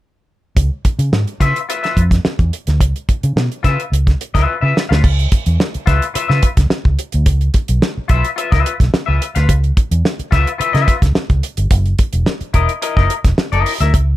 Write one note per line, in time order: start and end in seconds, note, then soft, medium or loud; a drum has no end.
0.57 0.68 C#2 medium
0.57 kick loud
0.57 closed hi-hat loud
0.85 muted fingered electric bass stroke soft
0.85 kick medium
0.85 closed hi-hat medium
0.99 1.09 C#3 medium
0.99 closed hi-hat soft
1.12 1.24 G#2 medium
1.12 snare loud
1.27 closed hi-hat soft
1.40 1.52 C#3 medium
1.40 1.57 F4 medium
1.40 1.57 B4 medium
1.40 1.58 E5 medium
1.40 kick medium
1.40 snare soft
1.40 closed hi-hat medium
1.56 closed hi-hat soft
1.69 1.82 F4 medium
1.69 1.82 B4 medium
1.69 1.82 E5 medium
1.69 closed hi-hat medium
1.83 1.99 F4 medium
1.83 1.99 B4 medium
1.83 1.98 E5 medium
1.83 snare soft
1.83 closed hi-hat soft
1.97 2.19 F2 medium
1.97 kick medium
1.97 closed hi-hat medium
2.11 kick medium
2.11 snare soft
2.11 closed hi-hat soft
2.25 muted fingered electric bass stroke soft
2.25 snare loud
2.39 2.49 E2 medium
2.39 kick medium
2.39 closed hi-hat soft
2.53 closed hi-hat medium
2.67 2.81 D2 medium
2.67 snare soft
2.67 closed hi-hat soft
2.81 2.92 C#2 medium
2.81 kick loud
2.81 closed hi-hat loud
2.96 closed hi-hat soft
3.09 muted fingered electric bass stroke soft
3.09 kick medium
3.09 closed hi-hat medium
3.23 3.34 C#3 medium
3.23 closed hi-hat soft
3.36 3.48 B2 medium
3.36 snare loud
3.52 closed hi-hat soft
3.63 3.76 C#3 medium
3.63 3.80 F4 medium
3.63 3.80 B4 medium
3.63 3.81 E5 medium
3.63 kick medium
3.63 snare soft
3.63 closed hi-hat medium
3.80 closed hi-hat soft
3.92 4.14 C#2 medium
3.92 closed hi-hat medium
4.07 kick medium
4.07 snare soft
4.07 closed hi-hat soft
4.21 closed hi-hat medium
4.34 4.45 C#2 medium
4.34 4.55 F4 medium
4.34 4.54 B4 medium
4.34 4.54 E5 medium
4.34 kick medium
4.34 snare soft
4.34 closed hi-hat soft
4.61 4.73 C#3 medium
4.61 4.78 F4 medium
4.61 4.77 B4 medium
4.61 4.77 E5 medium
4.77 snare medium
4.89 5.01 D2 medium
4.89 5.02 F4 soft
4.89 5.02 B4 medium
4.89 5.01 F5 medium
4.89 snare medium
5.04 5.26 C#2 medium
5.04 kick loud
5.04 crash loud
5.19 closed hi-hat soft
5.32 kick medium
5.32 closed hi-hat medium
5.46 5.57 E2 medium
5.46 closed hi-hat soft
5.60 snare loud
5.74 muted fingered electric bass stroke soft
5.74 closed hi-hat soft
5.86 5.99 C#2 medium
5.86 6.03 F4 medium
5.86 6.03 B4 medium
5.86 6.04 E5 medium
5.86 kick medium
5.86 snare soft
5.86 closed hi-hat medium
6.02 closed hi-hat soft
6.14 6.27 F4 medium
6.14 6.28 B4 medium
6.14 6.27 E5 medium
6.14 muted fingered electric bass stroke soft
6.14 closed hi-hat medium
6.28 6.40 C#3 medium
6.28 6.45 F4 medium
6.28 6.44 B4 medium
6.28 6.44 E5 medium
6.28 snare soft
6.43 kick medium
6.43 closed hi-hat medium
6.57 6.68 C#2 medium
6.57 kick medium
6.57 snare soft
6.57 closed hi-hat medium
6.70 snare loud
6.85 6.95 C#2 medium
6.85 kick medium
6.99 closed hi-hat medium
7.12 7.24 D2 loud
7.12 closed hi-hat medium
7.26 7.48 C#2 loud
7.26 kick loud
7.26 closed hi-hat loud
7.41 closed hi-hat soft
7.54 kick medium
7.54 closed hi-hat medium
7.68 7.79 B1 medium
7.68 closed hi-hat medium
7.82 snare loud
7.97 muted fingered electric bass stroke soft
8.08 8.21 B1 medium
8.08 8.25 F4 medium
8.08 8.26 B4 medium
8.08 8.26 E5 medium
8.08 kick medium
8.08 closed hi-hat medium
8.24 closed hi-hat soft
8.36 8.50 F4 medium
8.36 8.50 B4 medium
8.36 8.50 E5 medium
8.36 closed hi-hat medium
8.52 8.62 C#2 medium
8.52 8.72 F4 medium
8.52 8.72 B4 medium
8.52 8.71 E5 medium
8.52 kick medium
8.52 snare soft
8.52 closed hi-hat soft
8.66 closed hi-hat medium
8.80 8.90 B1 medium
8.80 kick medium
8.80 snare soft
8.80 closed hi-hat medium
8.94 snare loud
9.06 9.18 C#2 medium
9.06 9.23 F4 medium
9.06 9.22 B4 medium
9.06 9.22 E5 medium
9.22 closed hi-hat medium
9.35 9.46 D2 medium
9.35 9.48 F4 medium
9.35 9.47 B4 medium
9.35 9.47 F5 medium
9.35 snare soft
9.35 closed hi-hat medium
9.49 9.70 C#2 loud
9.49 kick loud
9.49 closed hi-hat loud
9.64 closed hi-hat soft
9.77 kick medium
9.77 closed hi-hat medium
9.91 10.01 E2 medium
9.91 closed hi-hat medium
10.05 snare loud
10.19 muted fingered electric bass stroke soft
10.19 closed hi-hat soft
10.31 10.44 C#2 medium
10.31 10.48 F4 medium
10.31 10.48 B4 medium
10.31 10.49 E5 loud
10.31 kick medium
10.31 snare soft
10.31 closed hi-hat medium
10.47 closed hi-hat soft
10.58 10.72 F4 medium
10.58 10.73 B4 medium
10.58 10.72 E5 medium
10.58 muted fingered electric bass stroke medium
10.58 closed hi-hat medium
10.73 10.85 C#3 medium
10.73 10.95 F4 medium
10.73 10.94 B4 medium
10.73 10.93 E5 loud
10.73 snare soft
10.73 closed hi-hat soft
10.88 kick medium
10.88 closed hi-hat medium
11.02 11.12 C#2 medium
11.02 kick medium
11.02 snare soft
11.02 closed hi-hat medium
11.15 muted fingered electric bass stroke soft
11.15 snare loud
11.30 11.40 C#2 medium
11.30 kick medium
11.30 closed hi-hat soft
11.43 closed hi-hat medium
11.57 11.68 G1 medium
11.57 closed hi-hat medium
11.71 11.93 F#1 loud
11.71 kick loud
11.71 closed hi-hat loud
11.86 closed hi-hat soft
11.99 kick loud
11.99 closed hi-hat medium
12.13 12.24 E1 medium
12.13 closed hi-hat soft
12.26 snare loud
12.41 muted fingered electric bass stroke soft
12.41 closed hi-hat soft
12.54 12.66 E1 medium
12.54 12.71 E4 medium
12.54 12.71 A#4 medium
12.54 12.71 D#5 medium
12.54 kick medium
12.54 closed hi-hat medium
12.69 closed hi-hat soft
12.82 12.95 E4 medium
12.82 12.96 A#4 medium
12.82 12.95 D#5 medium
12.82 closed hi-hat medium
12.97 13.07 F#1 medium
12.97 13.13 E4 medium
12.97 13.12 A#4 medium
12.97 13.12 D#5 medium
12.97 kick medium
12.97 snare soft
13.10 closed hi-hat medium
13.24 13.35 E1 medium
13.24 kick medium
13.24 snare soft
13.24 closed hi-hat medium
13.38 muted fingered electric bass stroke soft
13.38 snare loud
13.52 13.63 F#1 medium
13.52 13.73 E4 medium
13.52 13.72 A#4 medium
13.52 13.72 D#5 medium
13.52 closed hi-hat soft
13.66 open hi-hat medium
13.80 13.91 D2 medium
13.80 13.93 E4 soft
13.80 13.93 A#4 medium
13.80 13.92 E5 medium
13.80 snare soft
13.80 closed hi-hat soft
13.94 14.15 C#2 loud
13.94 kick loud
13.94 closed hi-hat loud